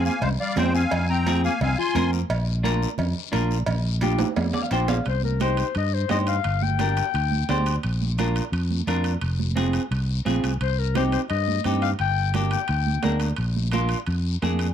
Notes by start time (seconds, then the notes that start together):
Already playing: C4 F4 G#4
0.05 A#3 F5 G#5, short guiro
0.21 C2 G#3 C5 F5, cowbell, high conga, low conga, long guiro
0.40 G3 D5 F5
0.56 F2 G#3 C4 F4 G#4 C5 G5, cowbell, high conga, low timbale, short guiro
0.74 C4 F5 G#5, short guiro
0.91 F2, cowbell, high conga, low conga, long guiro
1.09 C4 G5 A#5
1.26 C4 F4 G#4, cowbell, high conga, short guiro
1.44 A#3 F5 G#5, short guiro
1.61 C2 C4 F5 G#5, cowbell, high conga, low conga, long guiro
1.78 F4 G#5 C6
1.95 F2 C4 F4 A#4, cowbell, high conga, low conga, short guiro
2.13 short guiro
2.30 A#1, cowbell, high conga, long guiro
2.63 D4 F4 A#4, cowbell, high conga, short guiro
2.83 short guiro
2.98 F2, cowbell, high conga, low conga, long guiro
3.32 A#1 D4 F4 A#4, cowbell, high conga, short guiro
3.51 short guiro
3.66 A#1, cowbell, high conga, low conga, long guiro
4.01 D4 F4 G4, cowbell, high conga, short guiro
4.19 high conga, high timbale, short guiro
4.36 F2, cowbell, high conga, low timbale, long guiro
4.53 D5, low conga, low timbale
4.63 F5
4.71 A#1 D4 F4 C5 G5, cowbell, short guiro
4.88 F5, low conga, low timbale, short guiro
5.05 C2 C5, high conga, high timbale, long guiro
5.23 A#4, high conga
5.40 D#4 G4 C5, high conga, high timbale, short guiro
5.57 C5, high timbale, short guiro
5.75 G2 D#5, high conga, high timbale, long guiro
5.94 C5
6.09 G2 D#4 G4 C5 D#5, high conga, high timbale, low timbale, short guiro
6.27 F5, high timbale, short guiro
6.44 G1, high conga, high timbale, long guiro
6.62 G5, high conga
6.79 D4 G4 A#4, high conga, high timbale, short guiro
6.97 high timbale, short guiro
7.14 D2, high conga, high timbale, long guiro
7.32 high conga
7.49 D2 D4 G4 C5, high conga, high timbale, low timbale, short guiro
7.66 high timbale, short guiro
7.83 A#1, high conga, high timbale, long guiro
8.02 high conga
8.18 D4 F4 A#4, high conga, high timbale, short guiro
8.36 high timbale, short guiro
8.52 F2, high conga, high timbale, long guiro
8.71 high conga
8.87 F2 D4 F4 A#4, high conga, high timbale, short guiro
9.04 high timbale, short guiro
9.21 F1, high conga, high timbale, long guiro
9.39 high conga
9.56 C4 F4 G#4, high conga, high timbale, short guiro
9.73 high timbale, short guiro
9.91 C2, high conga, high timbale, long guiro
10.25 A#1 C4 F4 G#4, high conga, high timbale, short guiro
10.44 C2, high timbale, short guiro
10.61 C2 C5, high timbale, long guiro
10.79 A#4
10.95 C4 D#4 G4 C5, high conga, high timbale, short guiro
11.12 C5, high timbale, short guiro
11.30 G2 D#5, high conga, high timbale, long guiro
11.48 high conga
11.64 G2 C4 D#4 G4, high conga, high timbale, short guiro
11.82 F5, high timbale, short guiro
11.99 G1 G5, high conga, high timbale, long guiro
12.34 A#3 D4 G4, high conga, high timbale, short guiro
12.51 G5, high timbale, short guiro
12.68 D2, high conga, high timbale, long guiro
12.87 high conga
13.03 D2 A#3 D4 A#4, high conga, high timbale, low timbale, short guiro
13.20 high timbale, short guiro
13.36 A#1, high conga, high timbale, long guiro
13.56 high conga
13.72 A#3 D4 F4, high conga, high timbale, short guiro
13.89 high timbale, short guiro
14.07 F2, high conga, high timbale, long guiro
14.42 F2 A#3 D4 G#4, high conga, high timbale, short guiro
14.59 high timbale, short guiro